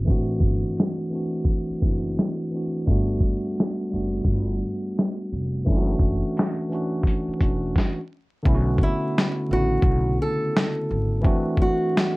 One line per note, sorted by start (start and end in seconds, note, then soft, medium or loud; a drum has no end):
0.00 0.10 C#4 medium
0.05 0.40 A1 loud
0.05 0.92 E3 loud
0.05 0.93 A3 medium
0.05 0.94 C4 loud
0.05 kick loud
0.05 closed hi-hat medium
0.09 0.94 D4 medium
0.09 0.95 F#4 loud
0.40 0.62 G1 medium
0.40 kick medium
0.40 closed hi-hat soft
0.78 snare loud
0.78 closed hi-hat medium
1.10 1.70 E3 medium
1.10 1.71 A3 medium
1.10 1.71 C4 medium
1.10 1.72 D4 medium
1.15 1.73 F#4 medium
1.45 kick medium
1.45 closed hi-hat medium
1.70 muted upright bass stroke soft
1.80 2.16 F#1 medium
1.80 2.40 E3 medium
1.80 2.41 A3 medium
1.80 2.41 C4 medium
1.80 kick medium
1.84 2.42 D4 medium
1.84 1.92 E4 medium
1.92 2.46 F#4 medium
2.18 snare loud
2.18 closed hi-hat medium
2.51 2.81 E3 medium
2.51 2.81 A3 medium
2.51 2.82 C4 medium
2.55 2.83 D4 medium
2.55 2.84 F#4 medium
2.86 3.20 G1 loud
2.86 3.72 G3 loud
2.86 3.73 A3 loud
2.86 3.74 B3 medium
2.86 kick loud
2.86 closed hi-hat medium
2.90 3.74 D4 medium
2.90 3.75 F#4 loud
3.20 kick medium
3.20 closed hi-hat soft
3.20 shaker soft
3.58 snare loud
3.58 closed hi-hat medium
3.90 4.24 F#1 medium
3.90 5.03 G3 medium
3.90 5.04 A3 medium
3.90 5.04 B3 medium
3.90 shaker medium
3.95 5.05 D4 medium
3.95 5.05 F#4 medium
4.25 4.59 G1 medium
4.25 kick medium
4.25 closed hi-hat medium
4.62 shaker soft
4.97 snare loud
4.97 closed hi-hat medium
5.32 5.65 F1 medium
5.32 shaker soft
5.65 5.99 F#1 loud
5.65 6.51 E3 loud
5.65 6.52 A3 loud
5.65 6.53 C#4 loud
5.65 6.53 D4 medium
5.65 kick loud
5.65 closed hi-hat medium
5.70 5.76 E4 medium
5.76 6.57 F#4 loud
5.99 6.21 F#1 medium
5.99 kick medium
5.99 closed hi-hat soft
5.99 shaker soft
6.37 snare loud
6.37 closed hi-hat medium
6.69 7.29 E3 medium
6.69 7.29 A3 medium
6.69 7.30 C#4 medium
6.69 shaker medium
6.73 7.31 D4 medium
6.73 7.31 F#4 medium
7.03 kick medium
7.03 closed hi-hat medium
7.28 muted upright bass stroke soft
7.38 7.74 E1 medium
7.38 7.98 E3 medium
7.38 7.98 A3 medium
7.38 7.99 C#4 medium
7.38 kick medium
7.38 closed hi-hat soft
7.38 shaker soft
7.42 8.00 D4 medium
7.42 8.00 F#4 medium
7.76 kick loud
7.76 snare medium
8.43 8.79 B1 loud
8.43 9.30 D3 loud
8.43 9.31 A3 loud
8.43 9.31 B3 loud
8.43 kick loud
8.47 9.32 C#4 loud
8.47 8.55 E4 loud
8.55 9.36 F#4 loud
8.78 kick medium
8.83 9.47 E4 medium
9.18 snare loud
9.48 9.82 A1 medium
9.48 9.57 C#3 medium
9.48 10.62 A3 medium
9.48 10.62 B3 medium
9.53 10.64 D3 medium
9.53 10.63 C#4 medium
9.53 10.64 E4 medium
9.53 10.17 F#4 medium
9.82 10.17 B1 loud
9.82 kick loud
10.22 11.22 A4 medium
10.57 snare loud
10.91 11.23 G#1 medium
11.21 12.09 E3 loud
11.21 12.09 A3 loud
11.21 12.10 C4 loud
11.21 12.11 D4 loud
11.21 kick loud
11.27 12.11 F#4 loud
11.57 kick medium
11.62 12.17 F#4 medium
11.97 snare loud